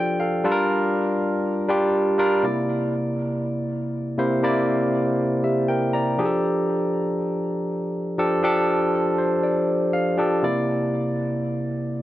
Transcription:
0.00 0.47 F3 loud
0.00 0.45 D4 medium
0.00 0.45 F4 medium
0.00 0.47 G4 medium
0.00 0.21 A4 loud
0.00 0.46 D5 medium
0.00 0.19 G5 medium
0.20 0.44 A4 medium
0.20 0.67 F5 medium
0.44 1.16 G3 loud
0.44 1.16 D4 medium
0.44 1.16 F4 medium
0.44 0.51 A4 medium
0.52 1.20 A#4 loud
1.68 2.05 G3 medium
1.68 2.05 D4 medium
1.68 2.06 F4 medium
1.68 2.06 G4 loud
2.18 2.37 G3 medium
2.18 2.37 D4 medium
2.18 2.37 F4 medium
2.18 2.37 A#4 medium
2.43 3.15 C3 medium
2.43 3.15 A#3 medium
2.43 3.15 E4 medium
2.43 3.16 D5 medium
4.18 4.36 C3 medium
4.18 4.37 A#3 medium
4.18 4.37 E4 medium
4.18 4.37 C5 medium
4.43 5.15 C3 medium
4.43 5.15 A#3 medium
4.43 5.15 E4 medium
4.43 5.16 D5 medium
5.44 5.68 G4 soft
5.44 5.67 E5 medium
5.68 5.93 A#4 medium
5.68 5.92 G5 medium
5.93 6.41 D5 medium
5.93 6.41 A#5 medium
6.18 6.99 F3 medium
6.18 6.99 D4 medium
6.18 6.99 G4 medium
6.18 6.25 G#4 medium
6.25 7.02 A4 medium
8.18 8.36 F3 medium
8.18 8.37 D4 medium
8.18 8.37 G4 medium
8.18 8.37 A4 medium
8.43 9.15 F3 medium
8.43 9.15 D4 medium
8.43 9.16 G4 medium
8.43 9.16 A4 medium
9.18 9.42 C5 medium
9.43 9.90 D5 medium
9.93 10.40 F5 medium
10.18 10.36 F3 medium
10.18 10.37 D4 medium
10.18 10.37 G4 medium
10.18 10.37 A4 medium
10.43 11.15 C3 medium
10.43 11.15 A#3 medium
10.43 11.15 E4 medium
10.43 11.15 D5 medium

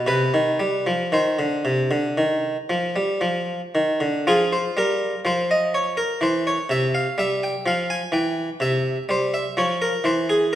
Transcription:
0.07 0.32 C3 medium
0.07 0.97 B4 medium
0.34 0.58 D#3 soft
0.60 0.84 G3 soft
0.87 1.11 F3 medium
1.12 1.37 D#3 medium
1.12 2.91 C5 medium
1.39 1.63 D3 soft
1.65 1.89 C3 soft
1.91 2.15 D3 soft
2.18 2.55 D#3 soft
2.70 2.94 F3 soft
2.96 3.21 G3 soft
3.21 3.59 F3 medium
3.75 4.00 D#3 soft
4.00 4.25 D3 soft
4.27 4.63 F3 soft
4.27 6.18 F4 soft
4.27 4.52 G#4 medium
4.53 4.77 C5 medium
4.77 5.12 G3 soft
4.77 5.19 A#4 medium
5.25 5.94 F3 soft
5.25 5.50 C5 medium
5.51 5.74 D#5 medium
5.74 5.98 C#5 medium
5.97 6.21 A#4 medium
6.21 6.56 E3 soft
6.21 6.46 C5 medium
6.47 6.71 C#5 medium
6.69 7.05 C3 soft
6.69 6.95 E5 medium
6.95 7.19 F5 medium
7.18 7.53 G3 soft
7.18 7.43 E5 medium
7.43 7.67 G5 medium
7.66 8.01 F3 medium
7.66 7.91 F5 medium
7.90 8.15 G#5 medium
8.12 8.48 E3 soft
8.12 8.62 G5 medium
8.60 8.96 C3 soft
8.60 9.03 E5 medium
9.09 9.44 G3 soft
9.09 9.35 C5 medium
9.34 9.58 E5 medium
9.57 9.92 F3 soft
9.57 9.82 C#5 medium
9.82 10.06 A#4 medium
10.04 10.55 E3 soft
10.04 10.30 C5 medium
10.30 10.54 G#4 medium

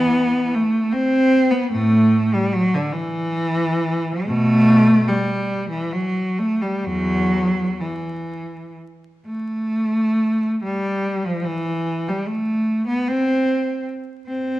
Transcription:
0.00 0.52 E3 medium
0.00 0.51 B3 loud
0.55 0.93 A3 loud
0.92 1.52 C4 loud
1.50 1.71 B3 medium
1.71 2.30 A2 medium
1.71 2.32 A3 loud
2.34 2.54 G3 medium
2.53 2.74 F#3 loud
2.75 2.94 D3 medium
2.92 4.26 E3 loud
4.25 5.05 B2 loud
4.25 5.08 A3 loud
5.08 5.70 G3 loud
5.70 5.92 E3 medium
5.92 6.38 F#3 medium
6.39 6.61 A3 medium
6.61 6.84 G3 medium
6.84 7.77 E2 medium
6.84 7.81 F#3 loud
7.81 8.74 E3 medium
9.26 10.58 A3 medium
10.64 11.26 G3 loud
11.25 11.46 F3 medium
11.44 12.07 E3 loud
12.08 12.28 G3 medium
12.27 12.87 A3 medium
12.87 13.06 B3 medium
13.08 13.86 C4 loud
14.26 14.60 C4 loud

